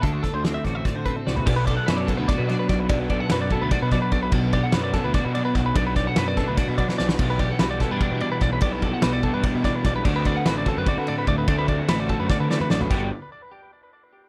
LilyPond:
<<
  \new Staff \with { instrumentName = "Clean electric guitar" } { \time 7/8 \key b \phrygian \tempo 4 = 147 a'16 fis'16 a'16 c''16 a'16 e''16 d''16 e''16 d''16 c''16 b'16 a'16 d''16 b'16 | d''16 b'16 d''16 fis''16 b'16 d''16 a'16 b'16 d''16 b'16 d''16 b'16 d''16 b'16 | d''16 b'16 d''16 fis''16 b'16 d''16 a'16 b'16 d''16 b'16 d''16 b'16 d''16 b'16 | d''16 b'16 d''16 fis''16 b'16 d''16 a'16 b'16 d''16 b'16 d''16 b'16 d''16 b'16 |
d''16 b'16 d''16 fis''16 b'16 d''16 a'16 b'16 d''16 b'16 d''16 b'16 d''16 b'16 | d''16 b'16 d''16 fis''16 b'16 d''16 a'16 b'16 d''16 b'16 d''16 b'16 d''16 b'16 | d''16 b'16 d''16 fis''16 b'16 d''16 a'16 b'16 d''16 b'16 d''16 b'16 d''16 b'16 | d''16 b'16 d''16 fis''16 b'16 d''16 a'16 b'16 d''16 b'16 d''16 b'16 d''16 b'16 |
d''16 b'16 d''16 fis''16 b'16 d''16 a'16 b'16 d''16 b'16 d''16 b'16 d''16 b'16 | g'8 r2. | }
  \new Staff \with { instrumentName = "Clean electric guitar" } { \time 7/8 \key b \phrygian << { r4 c'8 fis'4 c'8 fis'8 | r8 a'8 fis'8 b16 d'16 fis'8 d'4 | r8 a'8 fis'8 b16 d'16 fis'8 d'4 | r8 g'16 a'16 fis'8 d'8 fis'8 d'4 |
r8 g'16 a'16 fis'8 d'8 fis'8 d'4 | r8 g'16 a'16 fis'8 b16 d'8. d'4 | r8 a'8 fis'8 d'4 d'4 | r8 b'8 fis'4 fis'4. |
r4 fis'2~ fis'8 | <g b fis' b'>8 r2. | } \\ { d8 a4. a,4. | b,4 b4. fis4 | b,4 b4. fis4 | b,4 b4. fis4 |
b,4 b4. fis4 | b,4 g4. b,4 | b,4 g4. b,4 | d4 a4. a,4 |
d4 a4 d8 e8 fis8 | g,8 r2. | } >> }
  \new Staff \with { instrumentName = "Overdriven electric guitar" } { \time 7/8 \key b \phrygian r2. r8 | <b, fis b d'>4. <b, fis b d'>2 | <b, fis b d'>4. <b, fis b d'>2 | <b, fis b d'>4. <b, fis b d'>2 |
<b, fis b d'>4. <b, fis b d'>2 | <b, e b e' g'>4. <b, e b e' g'>2 | <b, e b e' g'>4. <b, e b e' g'>2 | <d a c' fis'>4. <d a c' fis'>2 |
<d a c' fis'>4. <d a c' fis'>2 | <g b d' g'>8 r2. | }
  \new Staff \with { instrumentName = "Picked electric bass" } { \clef bass \time 7/8 \key b \phrygian d,8 r16 d,8. a,,8 r16 d8 r16 c,8 | b,,4 fis,8. d,16 r16 b,8 r16 b,,8 | b,,4 fis,8. d,16 r16 b,8 r16 b,,8 | b,,4 fis,8. d,16 r16 b,8 r16 b,,8 |
b,,4 fis,8. d,16 r16 b,8 r16 b,,8 | b,,4 b,,8. g,16 r16 b,8 r16 b,,8 | b,,4 b,,8. g,16 r16 b,8 r16 b,,8 | d,4 a,,8. fis,16 r16 d8 r16 d,8 |
d,4 a,,8. fis,16 r16 d8 r16 a,,8 | g,,8 r2. | }
  \new DrumStaff \with { instrumentName = "Drums" } \drummode { \time 7/8 <hh bd>8 <hh bd sn>8 <hh sn>8 <hh bd sn>8 <hh bd sn>8 <hh bd>16 tommh16 sn16 tomfh16 | <cymc bd>8 <bd cymr>8 <cymr sn>8 <bd cymr>8 <bd cymr sn>8 <cymr sn>8 <bd cymr sn>8 | <bd cymr>8 <bd cymr>8 <cymr sn>8 <bd cymr>8 <bd cymr sn>8 <bd cymr sn>8 <bd cymr>8 | <cymc bd>8 <bd cymr>8 <cymr sn>8 <bd cymr sn>8 <bd cymr sn>8 cymr8 <bd cymr sn>8 |
<bd cymr>8 <bd cymr sn>8 <cymr sn>8 <bd cymr sn>8 <bd cymr sn>8 <bd cymr>16 sn16 sn16 sn16 | <cymc bd>8 <bd cymr>8 <cymr sn>8 <bd cymr sn>8 <bd cymr>8 cymr8 <bd cymr sn>8 | <bd cymr>8 <bd cymr>8 <cymr sn>8 <bd cymr>8 <bd cymr>8 <bd cymr sn>8 <bd cymr sn>8 | <cymc bd>8 <bd cymr>8 <cymr sn>8 <bd cymr>8 <bd cymr>8 cymr8 <bd cymr>8 |
<bd cymr>8 <bd cymr>8 <cymr sn>8 <bd cymr>8 <bd sn>8 sn16 toml16 sn16 tomfh16 | <cymc bd>4 r4 r4. | }
>>